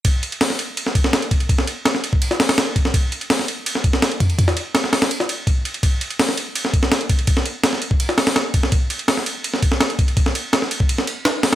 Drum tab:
RD |x-xx--x-x-x-xxxx|x-x-x-x-x---x-x-|x-xx--x-x-x-xxxx|x-x-x---x-x-x-xx|
HH |----o-----------|----------oo----|----o-----------|------oo--------|
SD |----oo---o-oo---|-o--oo---oooo--o|----oo---o-oo---|-o--oooo-o------|
BD |o---------o---o-|o------o------o-|o---------o---o-|o-----------o---|

RD |x-xx--x-x-x-xxxx|x-x-x-x-x---x-x-|x-xx--x-x-x-xxxx|x-x-x-x-x-x-x---|
HH |----o-----------|----------oo----|----o-----------|--------------o-|
SD |----oo---o-oo---|-o--oo---oooo--o|----oo---o-oo---|-o--oo---o--o-o-|
BD |o---------o---o-|o------o------o-|o---------o---o-|o------o--------|